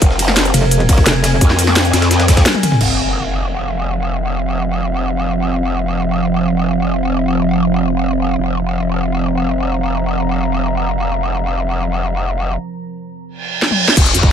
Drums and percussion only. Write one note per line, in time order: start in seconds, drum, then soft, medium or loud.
0.02 kick loud
0.02 closed hi-hat medium
0.11 snare medium
0.19 closed hi-hat medium
0.19 ride medium
0.28 snare soft
0.28 snare medium
0.37 snare loud
0.37 closed hi-hat medium
0.45 closed hi-hat soft
0.54 closed hi-hat medium
0.54 ride medium
0.71 closed hi-hat loud
0.71 closed hi-hat medium
0.80 closed hi-hat soft
0.89 kick loud
0.89 closed hi-hat medium
0.89 ride medium
0.98 kick loud
0.98 snare soft
1.06 snare loud
1.06 closed hi-hat medium
1.24 snare loud
1.24 closed hi-hat medium
1.24 ride medium
1.41 kick loud
1.41 closed hi-hat medium
1.50 snare soft
1.59 closed hi-hat medium
1.59 ride medium
1.67 snare medium
1.67 closed hi-hat soft
1.76 snare loud
1.76 closed hi-hat medium
1.76 open hi-hat medium
1.85 snare soft
1.85 closed hi-hat soft
1.93 snare loud
1.93 closed hi-hat medium
1.93 ride medium
2.02 snare loud
2.02 closed hi-hat medium
2.11 snare loud
2.11 closed hi-hat loud
2.11 closed hi-hat medium
2.20 snare loud
2.20 closed hi-hat medium
2.28 kick loud
2.28 snare loud
2.28 closed hi-hat medium
2.28 ride medium
2.37 kick loud
2.37 snare loud
2.37 closed hi-hat medium
2.46 snare loud
2.46 closed hi-hat loud
2.46 closed hi-hat medium
2.46 high tom medium
2.55 closed hi-hat soft
2.55 high tom medium
2.63 closed hi-hat medium
2.63 mid tom medium
2.63 ride medium
2.72 snare medium
2.72 mid tom medium
2.81 crash medium
13.62 snare medium
13.71 high tom medium
13.88 snare medium
13.97 kick loud
13.97 closed hi-hat medium
13.97 closed hi-hat loud
13.97 crash loud
14.06 snare medium
14.06 closed hi-hat soft
14.14 closed hi-hat medium
14.23 kick loud
14.23 snare soft